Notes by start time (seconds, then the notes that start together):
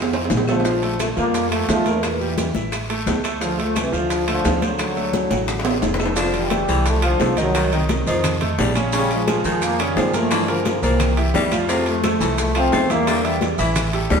Already playing: F2
0.02 low timbale
0.13 C4 C5, high bongo, high conga, high timbale, maracas
0.25 low timbale
0.30 A#1, high bongo, low bongo, high conga, short guiro, maracas
0.37 low timbale
0.48 D3 F3 A3 A4, high conga, low timbale, short guiro, claves, maracas
0.60 low timbale
0.65 F3 F4, high bongo, high conga, long guiro, maracas
0.82 A3 A4, high bongo, high timbale, maracas
0.99 F3 A3, high bongo, high conga, high timbale, low timbale, short guiro, claves, maracas
1.16 F2 F3 G3 A#3 F4, high bongo, short guiro, maracas
1.34 high bongo, high conga, high timbale, long guiro, maracas
1.51 F3 A3 A4, high conga, high timbale, claves, maracas
1.68 E2 F3 A3 F4, high bongo, low bongo, high conga, low timbale, short guiro, maracas
1.86 A#3 A#4, high bongo, high conga, high timbale, short guiro, maracas
2.03 A#2 E3, high bongo, high conga, high timbale, long guiro, claves, maracas
2.21 G3 G4, high bongo, high conga, maracas
2.38 high bongo, high conga, high timbale, low timbale, short guiro, maracas
2.55 A1 E4 E5, high bongo, high conga, short guiro, maracas
2.72 high bongo, high conga, high timbale, long guiro, claves, maracas
2.90 A3 A4, high bongo, high conga, high timbale, maracas
3.06 D2, high bongo, low bongo, high conga, low timbale, short guiro, maracas
3.24 A3 A4, high timbale, short guiro, claves, maracas
3.41 D3 F3 F4, high bongo, high conga, long guiro, maracas
3.58 F3 A3 A4, high bongo, high conga, high timbale, maracas
3.76 C3 E3, high bongo, high conga, high timbale, low timbale, short guiro, claves, maracas
3.92 D2 D3 F3 F4, high bongo, short guiro, maracas
4.10 high bongo, high conga, high timbale, long guiro, maracas
4.28 D3 F3 A3 A4, high conga, high timbale, claves, maracas
4.45 D2 F3 F4, high bongo, low bongo, high conga, low timbale, short guiro, maracas
4.62 D3 F#3 C4 C5, high bongo, high conga, high timbale, short guiro, maracas
4.79 high bongo, high conga, high timbale, long guiro, claves, maracas
4.96 A3 A4, high bongo, high conga, maracas
5.13 high bongo, high conga, high timbale, short guiro, maracas
5.30 A1 F#4 F#5, high bongo, high conga, high timbale, short guiro, maracas
5.48 high bongo, high conga, long guiro, claves, maracas
5.59 high bongo
5.65 C4 C5, high conga, low timbale, maracas
5.71 high bongo
5.82 F1, low bongo, high conga, low timbale, short guiro, maracas
5.94 low bongo
5.99 A3 A4, high conga, low timbale, short guiro, claves, maracas
6.05 low bongo
6.16 C3 D3 F3 F4 F5, high bongo, high conga, high timbale, long guiro, maracas
6.34 E3 G3, high conga, high timbale, maracas
6.50 A3 A4 C5, high bongo, high conga, high timbale, low timbale, short guiro, claves, maracas
6.68 C2 E3 A3 A4 C5, high conga, short guiro, maracas
6.86 F3 A3, high bongo, high conga, high timbale, long guiro, maracas
7.02 D3 F3 F4 F5, high conga, high timbale, claves, maracas
7.20 C2 F3 A3 A4 C5, high bongo, low bongo, high conga, low timbale, short guiro, maracas
7.37 D#3 F#3 D#4 D#5, high conga, high timbale, short guiro, maracas
7.54 D#3 F#3 F#4 A#4, high bongo, high conga, high timbale, long guiro, claves, maracas
7.72 C3 D#3 D#4 D#5, high bongo, high conga, high timbale, maracas
7.89 C3 D#3, high bongo, high conga, high timbale, low timbale, short guiro, maracas
8.06 F2 C3 D#3 F3 D#4 D#5, high bongo, high conga, short guiro, maracas
8.24 high bongo, high conga, low conga, high timbale, long guiro, claves, maracas
8.41 A3 A4 C5, high conga, low conga, high timbale, maracas
8.58 A#1 G3, high bongo, low bongo, high conga, low timbale, short guiro, maracas
8.75 C#3 C#4 C#5, high bongo, high conga, high timbale, short guiro, claves, maracas
8.93 C#3 G3 C#4 C#5, high bongo, high conga, high timbale, long guiro, maracas
9.11 F3 G#3, high conga, high timbale, maracas
9.28 F3 F4 G#4, high bongo, high conga, high timbale, low timbale, short guiro, claves, maracas
9.44 F2 D#3 F3 F4 G#4, high conga, short guiro, maracas
9.62 F3 A#3, high bongo, high conga, high timbale, long guiro, maracas
9.79 C#3 D#3 G3 C#4 C#5, high conga, high timbale, claves, maracas
9.96 G2 F3 F4 G#4, high bongo, low bongo, high conga, low timbale, short guiro, maracas
10.14 A#2 F3 A3 A#3 A#4, high conga, high timbale, short guiro, maracas
10.31 D3 E3 D4 F4, high bongo, high conga, high timbale, long guiro, claves, maracas
10.48 A#2 D3 F3 A#3 A#4, high bongo, high conga, high timbale, maracas
10.65 D3 F3, high bongo, high conga, high timbale, low timbale, short guiro, maracas
10.82 C2 A#2 E3 F3 G3 A#3 A#4, high bongo, high conga, short guiro, maracas
11.00 high bongo, high conga, low conga, high timbale, long guiro, claves, maracas
11.17 E3 E4 G4, high conga, high timbale, maracas
11.34 F2 G3, high bongo, low bongo, high conga, low timbale, short guiro, maracas
11.52 F3 F4 F5, high bongo, high conga, high timbale, short guiro, claves, maracas
11.69 C3 F3 A3 F4 F5, high bongo, high conga, high timbale, long guiro, maracas
11.86 F3 A3, high conga, high timbale, maracas
12.04 A3 A4 C5, high bongo, high conga, high timbale, low timbale, short guiro, claves, maracas
12.20 C2 E3 A3 A4 C5, high conga, short guiro, maracas
12.38 F3 A3, high bongo, high conga, high timbale, long guiro, maracas
12.55 F3 A3 C4 F4 F5, high conga, high timbale, claves, maracas
12.72 E2 F3 A3 A4 C5, high bongo, low bongo, high conga, low timbale, short guiro, maracas
12.90 E3 G3 A#3 E4 E5, high conga, high timbale, short guiro, maracas
13.07 D3 G3 G4 A#4, high bongo, high timbale, long guiro, claves, maracas
13.24 E3 G3 E4 E5, high bongo, high conga, high timbale, maracas
13.41 high bongo, high conga, high timbale, low timbale, short guiro, maracas
13.58 A1 E3 E4 E5, high bongo, high conga, short guiro, maracas
13.76 high bongo, high conga, low conga, high timbale, long guiro, claves, maracas
13.93 G3 G4 A4, high conga, high timbale, maracas
14.10 D2 G3, high bongo, low bongo, high conga, low timbale, short guiro, maracas